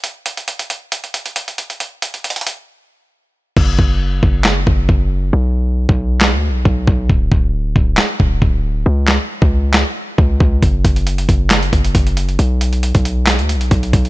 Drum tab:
CC |--------------------------------|--------------------------------|x-------------------------------|--------------------------------|
HH |x---x-x-x-x-x---x-x-x-x-x-x-x-x-|x---x-x-xxxxx-------------------|--------------------------------|--------------------------------|
CP |--------------------------------|--------------------------------|----------------x---------------|----------------x---------------|
SD |--------------------------------|--------------------------------|----------------o---------------|----------------o---------------|
BD |--------------------------------|--------------------------------|o---o-------o-------o---o-------|----------o-------------o---o---|

CC |--------------------------------|--------------------------------|--------------------------------|--------------------------------|
HH |--------------------------------|--------------------------------|x---x-x-x-x-x---x-x-x-x-x-x-x-x-|x---x-x-x-x-x---x-x-x-x-x-x-x-x-|
CP |----------------x---------------|----x-----------x---------------|----------------x---------------|----------------x---------------|
SD |----------------o---------------|----o-----------o---------------|----------------o---------------|----------------o---------------|
BD |o---o-------o-------o---o-------|----------o-------------o---o---|o---o-------o-------o---o-------|----------o-------------o---o---|